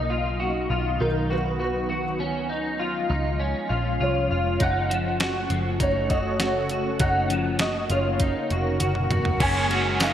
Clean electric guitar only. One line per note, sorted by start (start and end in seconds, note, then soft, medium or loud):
0.00 0.11 D#4 medium
0.10 0.39 F4 medium
0.40 0.70 F#4 medium
0.70 1.00 F4 medium
1.00 1.30 D#4 medium
1.30 1.59 F#4 medium
1.60 1.88 F#4 medium
1.90 2.20 F#4 medium
2.20 2.49 C#4 medium
2.49 2.80 D#4 medium
2.79 3.10 F4 medium
3.10 3.39 D#4 medium
3.40 3.70 C#4 medium
3.69 3.99 F4 medium
4.00 4.29 F4 medium
4.31 4.60 F4 medium
4.60 4.90 D#4 medium
4.90 5.20 F3 medium
5.20 5.50 F#4 medium
5.50 5.80 F3 medium
5.80 6.10 D#4 medium
6.11 6.39 F#4 medium
6.40 6.70 F#4 medium
6.71 7.01 F#4 medium
7.01 7.31 D#4 medium
7.30 7.60 F3 medium
7.61 7.90 F#4 medium
7.91 8.20 F4 medium
8.21 8.50 D#4 medium
8.52 8.79 F#4 medium
8.80 9.09 F#4 medium
9.11 9.40 F#4 medium
9.40 9.70 C#4 loud
9.71 10.01 F#4 medium
10.01 10.13 D#4 medium